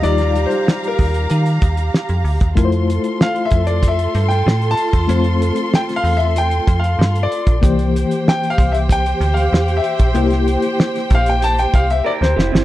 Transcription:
<<
  \new Staff \with { instrumentName = "Grand piano" } { \time 4/4 \key f \major \tempo 4 = 95 \tuplet 3/2 { d''4 c''8~ c''8 bes'4~ } bes'16 r4. r16 | r4 \tuplet 3/2 { f''8 e''8 d''8 e''4 g''8~ g''8 a''4~ } | a''16 r8. \tuplet 3/2 { g''8 f''8 e''8 g''4 f''8~ f''8 d''4~ } | d''16 r8. \tuplet 3/2 { g''8 f''8 e''8 g''4 f''8~ f''8 e''4~ } |
e''16 r4 r16 f''16 g''16 a''16 g''16 f''16 e''16 d''16 c''8. | }
  \new Staff \with { instrumentName = "String section" } { \time 4/4 \key f \major <g' f'' bes''>1 | <f' a' c'''>1~ | <f' a' c'''>1 | <g' c'' g''>1~ |
<g' c'' g''>1 | }
  \new Staff \with { instrumentName = "Clean electric guitar" } { \time 4/4 \key f \major r1 | r1 | r1 | r1 |
r2. <g' bes'>8 <e' g'>16 <c' e'>16 | }
  \new Staff \with { instrumentName = "Reed electric piano" } { \time 4/4 \key f \major <g ees' f' d''>1 | <a e' f' bes' c''>1 | <a c' f' c''>1 | <e bes g' c''>1 |
<bes e' g' c''>1 | }
  \new Staff \with { instrumentName = "FM bass" } { \clef bass \time 4/4 \key f \major ees,8. r8. ees,8 ees8 ees,8 r16 f,16 d,16 ees,16 | f,8. r8. f,4 g,8 a,8 r16 e,16 | f,8. r8. e,4 f,8 g,8 r16 bes,,16 | c,8. r8. c,4 d,8 e,8 r16 bes,,16 |
c,8. r8. bes,,4 c,8 r16 d,16 f,,16 g,,16 | }
  \new DrumStaff \with { instrumentName = "Drums" } \drummode { \time 4/4 hh16 <hh sn>16 hh16 hh16 sn16 hh16 <hho bd>16 hh16 hh16 hh16 <hh bd>16 hh16 sn16 hh16 hho16 <hh bd>16 | <hh bd>16 hh16 hh16 hh16 sn16 hh16 <hh bd>16 hh16 <hh bd>16 hh16 hh16 hh16 sn16 hh16 hh16 <hh bd>16 | hh16 hh16 hh16 hh16 sn16 <hh sn>16 hho16 hh16 hh16 hh16 <hh bd>16 hh16 sn16 hh16 hh16 <hh bd>16 | <hh bd>16 hh16 hh16 hh16 sn16 hh16 <hh bd>16 hh16 <hh bd>16 hh16 hh16 hh16 sn16 hh16 hh16 <hh bd>16 |
hh16 <hh sn>16 hh16 hh16 sn16 <hh sn>16 <hh bd>16 hh16 hh16 hh16 <hh bd>16 hh16 r16 sn16 sn16 sn16 | }
>>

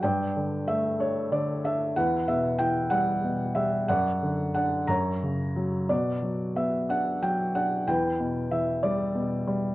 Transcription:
<<
  \new Staff \with { instrumentName = "Felt piano" } { \time 6/8 \key e \dorian \tempo 4. = 62 << { g''4 e''8 cis''8 d''8 e''8 | fis''8 e''8 g''8 fis''4 e''8 | fis''4 fis''8 ais''4 r8 | d''4 e''8 fis''8 g''8 fis''8 |
g''4 e''8 d''4 r8 | } \\ { d''4. r4. | b'4. r4. | d''4. cis''4. | fis'4. r4. |
b'4. r4. | } >> }
  \new Staff \with { instrumentName = "Felt piano" } { \clef bass \time 6/8 \key e \dorian g,8 d8 a8 d'8 d8 d'8 | e,8 b,8 e8 g8 b,8 g8 | fis,8 d8 d'8 fis,8 cis8 fis8 | b,8 fis8 b8 d'8 fis8 d'8 |
e,8 b,8 e8 g8 b,8 g8 | }
>>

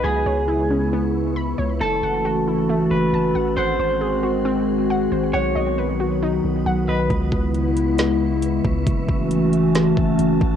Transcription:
<<
  \new Staff \with { instrumentName = "Synth texture" } { \time 4/4 \key cis \minor \tempo 4 = 136 << { <b' cis'''>1 | <a' e'''>1 | <gis' bis''>1 | <b' dis'''>1 |
<b' cis'''>1 | <fis' a''>1 | } \\ { e''1 | fis''1~ | fis''1 | fis''1 |
e''1~ | e''1 | } >> }
  \new Staff \with { instrumentName = "Synth pluck" } { \time 4/4 \key cis \minor b''8 cis''8 e'8 cis'8 b4 b''8 cis''8 | a''8 fis''8 fis'8 e'8 a4 a''8 fis''8 | fis''8 bis'8 gis'8 fis'8 bis4 fis''8 bis'8 | fis''8 dis''8 b'8 fis'8 dis'4 fis''8 dis''8 |
r1 | r1 | }
  \new Staff \with { instrumentName = "Clean electric guitar" } { \time 4/4 \key cis \minor gis'2. r4 | a'2~ a'8 b'4. | bis'2. r4 | cis''2 r4. b'8 |
r1 | r1 | }
  \new Staff \with { instrumentName = "Ambient pad" } { \time 4/4 \key cis \minor << { e'1 | fis'1 | fis'1~ | fis'1 |
e'1 | fis'1 | } \\ { <cis gis b>1 | <e a cis'>1 | <dis gis bis>1 | <dis fis b>1 |
<cis gis b>1 | <e a cis'>1 | } >> }
  \new Staff \with { instrumentName = "808-style bass" } { \clef bass \time 4/4 \key cis \minor cis,8 cis,2. cis,8 | fis,,8 fis,,2 fis,,8 fis,,8 a,,8 | gis,,8 gis,,2. gis,,8 | b,,8 b,,2 b,,8 b,,8 b,,8 |
cis,8 cis,2. cis,8 | fis,,8 fis,,2 fis,,8 fis,,8 a,,8 | }
  \new DrumStaff \with { instrumentName = "Drums" } \drummode { \time 4/4 r4 r4 r4 r4 | r4 r4 r4 r4 | r4 r4 r4 r4 | r4 r4 r4 r4 |
<hh bd>8 bd8 hh8 hh8 <hh sn>4 hh8 bd8 | <hh bd>8 bd8 hh8 hh8 <hh sn>8 bd8 hh8 bd8 | }
>>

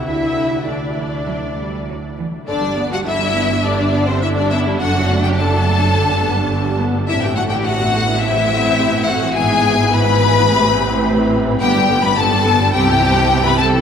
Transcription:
<<
  \new Staff \with { instrumentName = "Violin section" } { \time 4/4 \key g \major \tempo 4 = 105 e''4 d''2~ d''8 r8 | d''8. fis''16 e''4 d''8. c''16 e''16 d''16 e''8 | fis''8. g''16 a''2~ a''8 r8 | e''16 g''16 fis''16 g''16 fis''4 e''4. fis''8 |
gis''4 b''2~ b''8 r8 | g''8. b''16 a''4 g''4~ g''16 b''16 a''8 | }
  \new Staff \with { instrumentName = "Violin section" } { \time 4/4 \key g \major e''4 d''2~ d''8 r8 | d'8. fis'16 e'4 d'8. c'16 e'16 d'16 e'8 | fis'8. g'16 a'2~ a'8 r8 | e'16 g'16 fis'16 g'16 fis'4 e'4. fis'8 |
gis'4 b'2~ b'8 r8 | g'8. b'16 a'4 g'4~ g'16 b'16 a'8 | }
  \new Staff \with { instrumentName = "Viola section" } { \clef bass \time 4/4 \key g \major << { e'4 d'2~ d'8 r8 | d'1~ | d'1~ | d'2 c'2 |
b2 c'2 | b16 d'16 b16 d'16 b16 d'16 b16 d'16 c'16 e'16 c'16 e'16 c'16 e'16 c'16 e'16 | } \\ { r1 | d16 g16 b16 g16 d16 g16 b16 g16 d16 g16 b16 g16 d16 g16 b16 g16 | d16 fis16 a16 fis16 d16 fis16 a16 fis16 d16 g16 b16 g16 d16 g16 b16 g16 | c16 e16 a16 e16 c16 e16 a16 e16 c16 e16 a16 e16 c16 e16 a16 e16 |
e16 e16 e16 e16 e16 e16 e16 e16 c16 e16 c16 e16 c16 e16 c16 e16 | d16 g16 d16 g16 d16 g16 d16 g16 g16 e16 g16 e16 g16 e16 g16 e16 | } >> }
  \new Staff \with { instrumentName = "Cello section" } { \clef bass \time 4/4 \key g \major d4 d8 e8 fis8 g8 fis8 e8 | g,1 | fis,2 g,2 | a,1 |
gis,2 a,2 | g,2 c2 | }
  \new Staff \with { instrumentName = "Double bass section" } { \clef bass \time 4/4 \key g \major d,2.~ d,8 r8 | g,,1 | fis,,2 g,,2 | a,,1 |
gis,,2 a,,2 | g,,2 c,2 | }
>>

